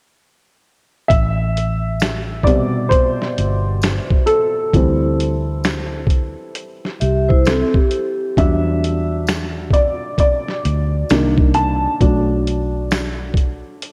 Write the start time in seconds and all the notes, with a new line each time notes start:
1.08 A1 E5, kick, closed hi-hat
1.57 closed hi-hat
2.00 finger snap, snare, closed hi-hat, tambourine
2.44 B2 C3 G3 D5, kick, closed hi-hat
2.89 C5, kick, closed hi-hat
3.22 snare
3.38 G1, closed hi-hat
3.82 finger snap, snare, closed hi-hat, tambourine
4.10 kick
4.26 A4, closed hi-hat
4.73 D2 E3 G3 C4, kick, closed hi-hat
5.20 closed hi-hat
5.64 finger snap, snare, closed hi-hat, tambourine
6.07 kick, closed hi-hat
6.55 closed hi-hat
6.85 snare
7.00 C2 G4 E5, closed hi-hat
7.29 E4 C5, kick
7.45 C4 A4, finger snap, snare, closed hi-hat, tambourine
7.74 G4, kick
7.91 closed hi-hat
8.37 E2 F#3 G3 D4 E5, kick, closed hi-hat
8.84 closed hi-hat
9.27 finger snap, snare, closed hi-hat, tambourine
9.71 D5, kick, closed hi-hat
10.18 D5, kick, closed hi-hat
10.48 snare
10.65 D2, closed hi-hat
11.09 C2 D#3 A#3 D4, finger snap, snare, closed hi-hat, tambourine
11.38 kick
11.54 A5, closed hi-hat
12.01 B1 F#3 A3 D4, kick, closed hi-hat
12.47 closed hi-hat
12.91 finger snap, snare, closed hi-hat, tambourine
13.34 kick, closed hi-hat
13.82 closed hi-hat